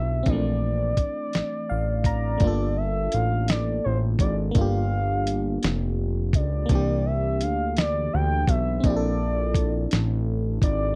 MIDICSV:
0, 0, Header, 1, 5, 480
1, 0, Start_track
1, 0, Tempo, 714286
1, 177, Time_signature, 6, 3, 24, 8
1, 7360, End_track
2, 0, Start_track
2, 0, Title_t, "Soft synth lead"
2, 0, Program_c, 0, 80
2, 0, Note_on_c, 0, 76, 123
2, 193, Note_on_c, 0, 74, 104
2, 203, Note_off_c, 0, 76, 0
2, 1385, Note_off_c, 0, 74, 0
2, 1388, Note_on_c, 0, 74, 98
2, 1860, Note_on_c, 0, 76, 108
2, 1871, Note_off_c, 0, 74, 0
2, 2104, Note_on_c, 0, 77, 116
2, 2114, Note_off_c, 0, 76, 0
2, 2344, Note_on_c, 0, 74, 104
2, 2354, Note_off_c, 0, 77, 0
2, 2578, Note_off_c, 0, 74, 0
2, 2582, Note_on_c, 0, 72, 96
2, 2676, Note_off_c, 0, 72, 0
2, 2824, Note_on_c, 0, 74, 90
2, 2918, Note_off_c, 0, 74, 0
2, 3064, Note_on_c, 0, 77, 112
2, 3994, Note_off_c, 0, 77, 0
2, 4265, Note_on_c, 0, 74, 94
2, 4743, Note_on_c, 0, 76, 102
2, 4753, Note_off_c, 0, 74, 0
2, 4987, Note_on_c, 0, 77, 101
2, 4997, Note_off_c, 0, 76, 0
2, 5220, Note_off_c, 0, 77, 0
2, 5224, Note_on_c, 0, 74, 109
2, 5464, Note_on_c, 0, 79, 116
2, 5474, Note_off_c, 0, 74, 0
2, 5699, Note_on_c, 0, 76, 98
2, 5709, Note_off_c, 0, 79, 0
2, 5936, Note_off_c, 0, 76, 0
2, 5940, Note_on_c, 0, 74, 106
2, 6872, Note_off_c, 0, 74, 0
2, 7146, Note_on_c, 0, 74, 97
2, 7360, Note_off_c, 0, 74, 0
2, 7360, End_track
3, 0, Start_track
3, 0, Title_t, "FM electric piano"
3, 0, Program_c, 1, 5
3, 0, Control_c, 1, 64, 127
3, 0, Note_on_c, 1, 58, 61
3, 0, Note_on_c, 1, 62, 60
3, 0, Note_on_c, 1, 64, 59
3, 0, Note_on_c, 1, 67, 68
3, 137, Note_off_c, 1, 58, 0
3, 148, Note_off_c, 1, 62, 0
3, 155, Note_on_c, 1, 60, 67
3, 170, Note_off_c, 1, 67, 0
3, 177, Note_on_c, 1, 62, 62
3, 180, Note_off_c, 1, 64, 0
3, 186, Control_c, 1, 64, 0
3, 198, Note_on_c, 1, 52, 56
3, 219, Note_on_c, 1, 57, 70
3, 307, Control_c, 1, 64, 127
3, 1139, Note_on_c, 1, 77, 67
3, 1361, Note_off_c, 1, 77, 0
3, 1386, Note_on_c, 1, 82, 70
3, 1579, Note_off_c, 1, 60, 0
3, 1589, Note_off_c, 1, 57, 0
3, 1590, Note_off_c, 1, 62, 0
3, 1597, Note_on_c, 1, 57, 54
3, 1600, Note_off_c, 1, 52, 0
3, 1605, Note_off_c, 1, 82, 0
3, 1618, Note_on_c, 1, 62, 60
3, 1626, Control_c, 1, 64, 0
3, 1639, Note_on_c, 1, 58, 70
3, 1640, Note_on_c, 1, 65, 64
3, 1651, Note_off_c, 1, 57, 0
3, 1661, Note_on_c, 1, 69, 74
3, 1750, Control_c, 1, 64, 127
3, 3025, Note_off_c, 1, 58, 0
3, 3030, Note_off_c, 1, 62, 0
3, 3033, Note_on_c, 1, 58, 74
3, 3041, Note_off_c, 1, 65, 0
3, 3052, Note_off_c, 1, 69, 0
3, 3054, Note_on_c, 1, 62, 63
3, 3076, Note_on_c, 1, 65, 64
3, 3099, Note_on_c, 1, 67, 78
3, 4458, Note_off_c, 1, 58, 0
3, 4469, Note_off_c, 1, 62, 0
3, 4474, Note_on_c, 1, 58, 74
3, 4480, Note_off_c, 1, 65, 0
3, 4491, Note_off_c, 1, 67, 0
3, 4494, Note_on_c, 1, 62, 63
3, 4504, Control_c, 1, 64, 0
3, 4515, Note_on_c, 1, 52, 64
3, 4537, Note_on_c, 1, 67, 77
3, 4607, Control_c, 1, 64, 127
3, 5898, Note_off_c, 1, 58, 0
3, 5908, Note_off_c, 1, 62, 0
3, 5916, Note_on_c, 1, 60, 66
3, 5919, Note_off_c, 1, 52, 0
3, 5930, Note_off_c, 1, 67, 0
3, 5938, Note_on_c, 1, 62, 62
3, 5945, Control_c, 1, 64, 0
3, 5959, Note_on_c, 1, 64, 65
3, 5980, Note_on_c, 1, 67, 64
3, 6002, Note_off_c, 1, 67, 0
3, 6024, Note_on_c, 1, 69, 80
3, 6072, Control_c, 1, 64, 127
3, 7339, Note_off_c, 1, 60, 0
3, 7350, Note_off_c, 1, 62, 0
3, 7360, Note_off_c, 1, 64, 0
3, 7360, Note_off_c, 1, 69, 0
3, 7360, End_track
4, 0, Start_track
4, 0, Title_t, "Analog synth bass"
4, 0, Program_c, 2, 38
4, 0, Note_on_c, 2, 35, 86
4, 155, Note_off_c, 2, 35, 0
4, 184, Note_on_c, 2, 34, 112
4, 634, Note_off_c, 2, 34, 0
4, 658, Note_on_c, 2, 33, 45
4, 706, Note_off_c, 2, 33, 0
4, 912, Note_on_c, 2, 33, 46
4, 956, Note_off_c, 2, 33, 0
4, 1150, Note_on_c, 2, 33, 84
4, 1597, Note_off_c, 2, 33, 0
4, 1624, Note_on_c, 2, 31, 118
4, 2074, Note_off_c, 2, 31, 0
4, 2109, Note_on_c, 2, 33, 90
4, 2556, Note_off_c, 2, 33, 0
4, 2593, Note_on_c, 2, 33, 97
4, 2802, Note_off_c, 2, 33, 0
4, 2823, Note_on_c, 2, 32, 96
4, 3036, Note_off_c, 2, 32, 0
4, 3065, Note_on_c, 2, 31, 109
4, 3754, Note_off_c, 2, 31, 0
4, 3791, Note_on_c, 2, 29, 96
4, 4263, Note_on_c, 2, 37, 104
4, 4273, Note_off_c, 2, 29, 0
4, 4476, Note_off_c, 2, 37, 0
4, 4506, Note_on_c, 2, 36, 102
4, 4992, Note_on_c, 2, 38, 96
4, 5002, Note_off_c, 2, 36, 0
4, 5438, Note_off_c, 2, 38, 0
4, 5472, Note_on_c, 2, 38, 96
4, 5681, Note_off_c, 2, 38, 0
4, 5703, Note_on_c, 2, 35, 99
4, 5916, Note_off_c, 2, 35, 0
4, 5945, Note_on_c, 2, 34, 112
4, 6634, Note_off_c, 2, 34, 0
4, 6673, Note_on_c, 2, 33, 95
4, 7118, Note_off_c, 2, 33, 0
4, 7143, Note_on_c, 2, 32, 99
4, 7356, Note_off_c, 2, 32, 0
4, 7360, End_track
5, 0, Start_track
5, 0, Title_t, "Drums"
5, 173, Note_on_c, 9, 42, 65
5, 176, Note_on_c, 9, 36, 103
5, 241, Note_off_c, 9, 42, 0
5, 244, Note_off_c, 9, 36, 0
5, 652, Note_on_c, 9, 36, 83
5, 654, Note_on_c, 9, 42, 70
5, 719, Note_off_c, 9, 36, 0
5, 721, Note_off_c, 9, 42, 0
5, 896, Note_on_c, 9, 42, 69
5, 907, Note_on_c, 9, 38, 106
5, 963, Note_off_c, 9, 42, 0
5, 974, Note_off_c, 9, 38, 0
5, 1372, Note_on_c, 9, 36, 91
5, 1377, Note_on_c, 9, 42, 74
5, 1440, Note_off_c, 9, 36, 0
5, 1444, Note_off_c, 9, 42, 0
5, 1612, Note_on_c, 9, 42, 79
5, 1616, Note_on_c, 9, 36, 115
5, 1679, Note_off_c, 9, 42, 0
5, 1683, Note_off_c, 9, 36, 0
5, 2096, Note_on_c, 9, 42, 77
5, 2163, Note_off_c, 9, 42, 0
5, 2339, Note_on_c, 9, 42, 75
5, 2351, Note_on_c, 9, 38, 114
5, 2407, Note_off_c, 9, 42, 0
5, 2418, Note_off_c, 9, 38, 0
5, 2815, Note_on_c, 9, 36, 99
5, 2821, Note_on_c, 9, 42, 81
5, 2882, Note_off_c, 9, 36, 0
5, 2888, Note_off_c, 9, 42, 0
5, 3056, Note_on_c, 9, 42, 78
5, 3058, Note_on_c, 9, 36, 114
5, 3123, Note_off_c, 9, 42, 0
5, 3126, Note_off_c, 9, 36, 0
5, 3540, Note_on_c, 9, 42, 78
5, 3608, Note_off_c, 9, 42, 0
5, 3781, Note_on_c, 9, 42, 72
5, 3793, Note_on_c, 9, 38, 113
5, 3848, Note_off_c, 9, 42, 0
5, 3860, Note_off_c, 9, 38, 0
5, 4255, Note_on_c, 9, 36, 102
5, 4262, Note_on_c, 9, 42, 79
5, 4322, Note_off_c, 9, 36, 0
5, 4329, Note_off_c, 9, 42, 0
5, 4497, Note_on_c, 9, 42, 77
5, 4498, Note_on_c, 9, 36, 110
5, 4564, Note_off_c, 9, 42, 0
5, 4566, Note_off_c, 9, 36, 0
5, 4978, Note_on_c, 9, 42, 74
5, 5045, Note_off_c, 9, 42, 0
5, 5219, Note_on_c, 9, 42, 75
5, 5231, Note_on_c, 9, 38, 125
5, 5286, Note_off_c, 9, 42, 0
5, 5298, Note_off_c, 9, 38, 0
5, 5695, Note_on_c, 9, 36, 101
5, 5703, Note_on_c, 9, 42, 83
5, 5762, Note_off_c, 9, 36, 0
5, 5770, Note_off_c, 9, 42, 0
5, 5938, Note_on_c, 9, 42, 74
5, 5939, Note_on_c, 9, 36, 113
5, 6006, Note_off_c, 9, 36, 0
5, 6006, Note_off_c, 9, 42, 0
5, 6414, Note_on_c, 9, 36, 90
5, 6421, Note_on_c, 9, 42, 79
5, 6482, Note_off_c, 9, 36, 0
5, 6488, Note_off_c, 9, 42, 0
5, 6661, Note_on_c, 9, 42, 73
5, 6673, Note_on_c, 9, 38, 122
5, 6728, Note_off_c, 9, 42, 0
5, 6740, Note_off_c, 9, 38, 0
5, 7135, Note_on_c, 9, 36, 105
5, 7141, Note_on_c, 9, 42, 82
5, 7202, Note_off_c, 9, 36, 0
5, 7209, Note_off_c, 9, 42, 0
5, 7360, End_track
0, 0, End_of_file